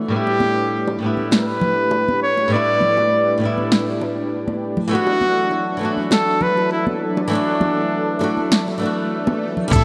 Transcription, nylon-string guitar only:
Already playing: F#4
0.08 A2 G3 B3
0.14 D4 E4
0.99 A2 G3 B3
1.04 D4 E4
2.48 A2 G3 B3
2.54 D4 E4
3.38 A2 G3 B3
3.43 D4 E4
4.88 E3 A3 B3
4.93 D4 F#4
5.77 E3 A3 B3
5.83 D4 F#4
7.28 E3 A3 B3
7.33 D4 F#4
8.19 E3 A3 D4
8.23 F#4
8.78 E3 A3 B3
8.83 D4 F#4
9.68 G3 B3
9.73 D4 E4

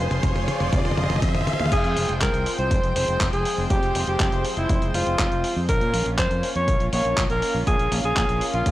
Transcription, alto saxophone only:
1.72 G#4
2.22 A#4
2.59 C5
2.96 C5
3.33 G#4
3.70 G4
4.08 G4
4.57 E4
4.94 F4
5.69 A#4
6.18 C5
6.56 C#5
6.93 C#5
7.30 A#4
7.67 G#4
8.05 G#4
8.54 F4

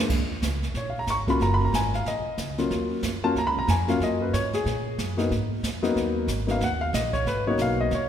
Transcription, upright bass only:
0.10 D#2
0.42 C#2
0.74 A#1
1.07 G#1
1.40 F#1
1.73 G#1
2.05 A#1
2.26 muted upright bass stroke
2.38 C#2
2.71 D#2
3.03 F#2
3.35 D#2
3.46 C#2
3.57 A#1
3.68 F2
4.00 F#2
4.33 G#2
4.65 A#2
4.98 F#2
5.31 G#2
5.63 F2
5.96 D#2
6.28 G#1
6.61 D#2
6.93 A#1
7.26 G#1
7.58 B1
7.91 D#2

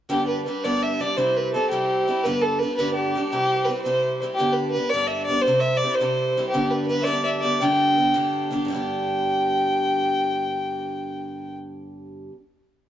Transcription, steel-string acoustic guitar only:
0.09 G2 D3 G3 B3 D4 G4
0.46 G3 B3 D4 G4
0.64 G2 D3 G3 B3 D4 G4
1.00 G3 B3 D4 G4
1.17 C3 G3 C4 E4 G4
1.54 G3 C4 E4 G4
1.71 C3 G3 C4 E4 G4
2.08 G3 C4 E4 G4
2.25 G2 D3 G3 B3 D4 G4
2.62 G3 B3 D4 G4
2.79 G2 D3 G3 B3 D4 G4
3.15 G3 B3 D4 G4
3.32 C3 G3 C4 E4 G4
3.68 G3 C4 E4 G4
3.85 C3 G3 C4 E4 G4
4.22 G3 C4 E4 G4
4.39 G2 D3 G3 B3 D4 G4
4.76 G3 B3 D4 G4
4.93 G2 D3 G3 B3 D4 G4
5.29 G3 B3 D4 G4
5.47 C3 G3 C4 E4 G4
5.83 G3 C4 E4 G4
6.00 C3 G3 C4 E4 G4
6.37 G3 C4 E4 G4
6.53 G2 D3 G3 B3 D4 G4
6.89 G3 B3 D4 G4
7.06 G2 D3 G3 B3 D4 G4
7.43 G3 B3 D4 G4
7.61 G2 D3 G3 B3 D4 G4
7.97 G3 B3 D4 G4
8.14 G2 D3 G3 B3 D4 G4
8.51 G3 B3 D4 G4
8.65 G2 D3
8.70 G3 B3
8.74 D4 G4

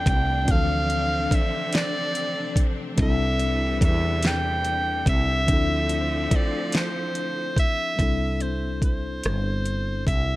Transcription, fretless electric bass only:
0.07 C2
0.49 D2
1.32 muted fretless electric bass stroke
2.99 C2
3.82 E2
5.07 C2
5.49 D2
6.32 muted fretless electric bass stroke
8.00 C2
9.25 G1
10.08 C2

